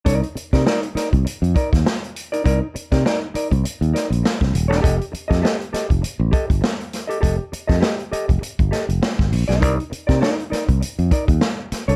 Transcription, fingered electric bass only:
X:1
M:4/4
L:1/16
Q:"Swing 16ths" 1/4=100
K:Cdor
V:1 name="Fingered electric bass" clef=bass
C,, z2 C, z3 C,, z F,, z E,, z4 | C,, z2 C, z3 C,, z E,, z B,,, z C,, E,,, =E,,, | F,,, z2 F,, z3 F,,, z A,,, z G,,, z4 | F,,, z2 F,, z3 F,,, z G,,, z F,,, z G,,, B,,, =B,,, |
C,, z2 C, z3 C,, z F,, z E,, z3 C,, |]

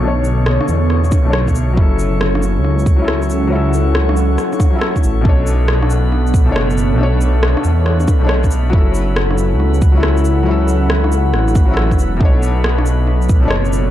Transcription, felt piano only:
X:1
M:4/4
L:1/16
Q:"Swing 16ths" 1/4=138
K:Bm
V:1 name="Felt piano"
[B,,A,Dc]8- [B,,A,Dc]3 [B,,A,Dc]4- [B,,A,Dc] | [F,CEA]8- [F,CEA]3 [F,CEA]4- [F,CEA] | [F,CEA]8- [F,CEA]3 [F,CEA]4- [F,CEA] | [B,,A,Dc]8- [B,,A,Dc]3 [B,,A,Dc]4- [B,,A,Dc] |
[B,,A,Dc]8- [B,,A,Dc]3 [B,,A,Dc]4- [B,,A,Dc] | [F,CEA]8- [F,CEA]3 [F,CEA]4- [F,CEA] | [F,CEA]8- [F,CEA]3 [F,CEA]4- [F,CEA] | [B,,A,Dc]8- [B,,A,Dc]3 [B,,A,Dc]4- [B,,A,Dc] |]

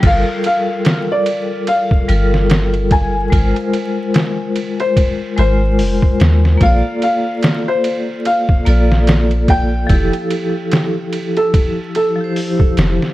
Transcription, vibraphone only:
X:1
M:4/4
L:1/16
Q:"Swing 16ths" 1/4=73
K:Gdor
V:1 name="Vibraphone"
[G,FAB]8- [G,FAB]2 [G,FAB]2 z4 | [_A,FBc]8- [A,FBc]2 [A,FBc]2 z4 | [B,FAd]8- [B,FAd]2 [B,FAd]2 z4 | [F,EGA]8- [F,EGA]2 z [F,EGc]4- [F,EGc] |]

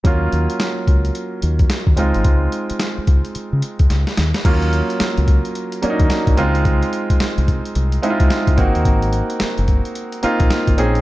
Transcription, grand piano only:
X:1
M:4/4
L:1/8
Q:"Swing 16ths" 1/4=109
K:Ebdor
V:1 name="Grand piano"
[G,B,DF]6- [G,B,DF] [A,CEF]- | [A,CEF]6- [A,CEF] z | [G,B,DF]3 z2 [G,B,D=DE]2 [A,CEF]- | [A,CEF]2 z3 [A,CE_F=F]2 [B,CEG]- |
[B,CEG]2 z3 [B,CEF]2 [CDEA] |]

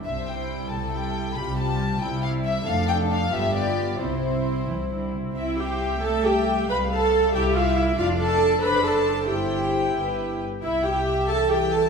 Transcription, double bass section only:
X:1
M:6/8
L:1/8
Q:3/8=91
K:C
V:1 name="Double bass section" clef=bass
C,,3 C,,3 | C,,3 C,,3 | F,,,3 G,,,3 | C,,3 C,,3 |
C,,6 | C,,3 C,,3 | F,,,3 ^F,,,3 | G,,,3 G,,,2 z |
C,,6 |]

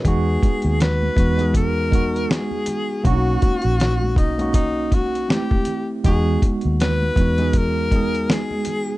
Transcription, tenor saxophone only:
X:1
M:4/4
L:1/16
Q:"Swing 16ths" 1/4=80
K:Elyd
V:1 name="Tenor saxophone"
G4 B4 A4 G4 | F6 D2 D2 F2 =G3 z | G2 z2 B4 A4 G4 |]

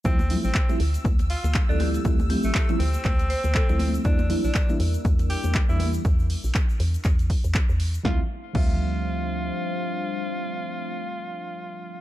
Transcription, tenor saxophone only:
X:1
M:4/4
L:1/16
Q:"Swing 16ths" 1/4=120
K:Dm
V:1 name="Tenor saxophone"
C2 z C2 z4 z F2 z D2 z | z3 A,2 z C8- C z | D2 z D2 z4 z G2 z E2 z | z16 |
F z3 F12- | F16 |]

